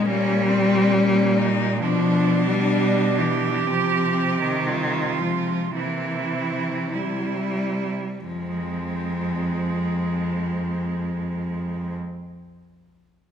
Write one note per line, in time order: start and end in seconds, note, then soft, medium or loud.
0.05 1.82 A#2 medium
0.05 1.79 G3 medium
0.05 0.50 A#3 medium
0.05 0.50 C#4 medium
0.48 0.95 C4 medium
0.94 1.83 A#3 medium
0.94 1.39 C#4 medium
1.37 1.81 D#4 medium
1.79 3.68 B2 medium
1.79 2.45 F3 medium
1.79 3.69 D4 medium
1.79 2.71 D4 medium
2.46 3.20 G3 medium
2.72 3.21 D4 medium
3.18 3.69 E3 medium
3.18 4.68 G4 medium
3.67 5.72 C3 medium
3.67 4.39 F3 medium
3.67 4.65 C4 medium
4.40 5.20 D#3 medium
4.65 5.20 G3 medium
4.65 5.76 F4 medium
5.18 5.74 F3 medium
5.18 5.75 G#3 soft
5.75 7.92 C3 medium
5.75 6.95 E3 medium
5.75 6.34 A#3 soft
5.75 6.91 E4 soft
6.33 6.95 C4 soft
6.93 8.25 G3 medium
6.93 7.58 E4 soft
6.93 7.94 E4 soft
8.25 11.96 F2 medium
8.25 11.96 F3 medium
8.25 11.96 G#3 soft
8.25 11.96 C4 medium